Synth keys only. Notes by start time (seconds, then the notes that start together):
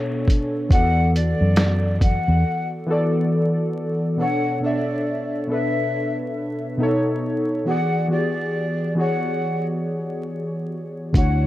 Already playing: B2 B3 D4 A4 C#5
0.69 E3 B3 F#4
0.73 A4 D5
2.86 E3 B3 F#4
2.90 A4 D5
4.17 B2 B3 D4
4.21 A4 C#5
4.60 B2 B3 D4
4.64 A4 E5
5.47 B2 B3 D4
5.51 A4 B4
6.77 B2 B3 D#4
6.82 A4 C#5
7.65 E3 B3 F#4
7.69 G#4 D5
8.08 E3 B3 F#4
8.12 G4 D5
8.19 G#4
8.95 E3 B3 F#4
8.99 G#4 C#5
11.12 D3 D4 E4
11.17 F#4 C#5